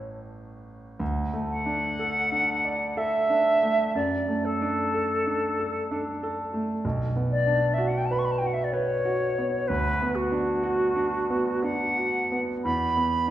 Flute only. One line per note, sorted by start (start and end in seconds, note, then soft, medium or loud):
1.50 2.99 F#5 medium
2.97 3.94 E5 medium
3.95 4.46 D5 medium
4.45 6.37 A4 medium
7.31 7.75 D5 medium
7.74 7.89 E5 medium
7.87 7.99 F#5 medium
7.97 8.07 G5 medium
8.05 8.13 A5 medium
8.12 8.20 B5 medium
8.19 8.26 C#6 medium
8.25 8.33 B5 medium
8.31 8.40 A5 medium
8.38 8.48 G5 medium
8.46 8.55 F#5 medium
8.53 8.65 E5 medium
8.64 8.74 D5 medium
8.72 9.69 C#5 medium
9.67 10.16 B4 medium
10.15 11.64 F#4 medium
11.63 12.40 F#5 medium
12.64 13.30 B5 medium